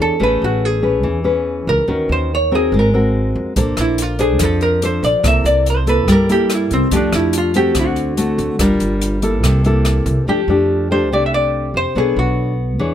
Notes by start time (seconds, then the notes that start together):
Already playing: E3 D4 G#4 C#5
0.02 A4
0.20 A1 A3 C#4 G#4 B4
0.42 A1 F#4
0.65 G#4
0.82 C#4 G#4 B4
1.03 E2 E3
1.24 C#4 G#4 B4
1.67 C#2 A#4
1.88 D#2 D#3 C#4 F#4 A#4
2.09 D#2 C5
2.35 C#5
2.52 C4 F#4 G#4 A#4
2.72 G#1 G#3
2.79 A#4
2.94 C4 F#4 A#4
3.36 F2
3.56 A#1 A#3 D4 A4 C5, kick, closed hi-hat
3.77 A#1 E4, cross-stick, closed hi-hat
3.98 closed hi-hat
4.02 F4
4.19 D4 G#4 A4 C5, closed hi-hat
4.39 F2 F3, kick, cross-stick, closed hi-hat
4.43 A4
4.61 A#4, closed hi-hat
4.82 D4 A4 C5, closed hi-hat
5.03 A#1 D5, closed hi-hat
5.23 C2 C3 A#3 E4 A4, kick, cross-stick, closed hi-hat
5.27 E5
5.44 C2 D5, closed hi-hat
5.66 C5, closed hi-hat
5.86 A#3 E4 A4 B4, closed hi-hat
6.08 G2 G3, kick, cross-stick, closed hi-hat
6.12 A#4
6.29 A#3 E4 G4 A4, closed hi-hat
6.50 cross-stick, closed hi-hat
6.54 E4
6.71 C2 C4, closed hi-hat
6.91 F2 F3 A3 D4 G4, kick, closed hi-hat
6.96 D4
7.13 F2 E4, cross-stick, closed hi-hat
7.33 closed hi-hat
7.38 F4
7.54 A3 C4 F#4 G4, closed hi-hat
7.75 D2 D3, kick, cross-stick, closed hi-hat
7.79 F#4
7.96 closed hi-hat
8.17 A3 C4 F#4, closed hi-hat
8.38 D2, closed hi-hat
8.59 G1 G3 D4 F4 A#4, kick, cross-stick, closed hi-hat
8.80 G1, closed hi-hat
9.02 closed hi-hat
9.22 A#3 E4 A4, closed hi-hat
9.43 C2 C3, kick, cross-stick, closed hi-hat
9.64 A#3 E4 A4, closed hi-hat
9.85 cross-stick, closed hi-hat
10.06 C2, kick, closed hi-hat
10.27 F2 F3 A3 D4 G4
10.48 F2 A3 D4 G4
10.91 A3 D4 G4 C5
11.10 C2 C3 A3 D4 G4 D5
11.26 E5
11.34 D5
11.74 F2 C5
11.95 B1 B3 D4 G#4 A4 C#5
12.16 B1 F#4
12.79 E2 E3 D4 G#4 C#5